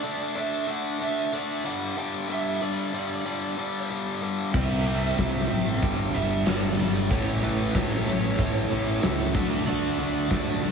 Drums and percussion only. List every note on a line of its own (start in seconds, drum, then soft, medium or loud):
4.54 kick loud
4.54 crash medium
4.86 closed hi-hat medium
5.18 kick medium
5.18 snare loud
5.18 closed hi-hat medium
5.18 tambourine loud
5.51 closed hi-hat medium
5.82 kick medium
5.82 closed hi-hat loud
6.14 closed hi-hat medium
6.46 snare loud
6.46 closed hi-hat loud
6.46 tambourine loud
6.79 closed hi-hat medium
7.10 kick loud
7.10 closed hi-hat loud
7.43 closed hi-hat medium
7.75 kick medium
7.75 snare loud
7.75 closed hi-hat loud
7.75 tambourine loud
8.07 closed hi-hat medium
8.24 snare soft
8.39 kick medium
8.39 closed hi-hat loud
8.70 closed hi-hat medium
9.03 snare loud
9.03 closed hi-hat loud
9.03 tambourine loud
9.35 kick loud
9.35 crash loud
9.99 closed hi-hat medium
10.31 kick medium
10.31 snare loud
10.31 closed hi-hat loud
10.31 tambourine loud
10.63 closed hi-hat medium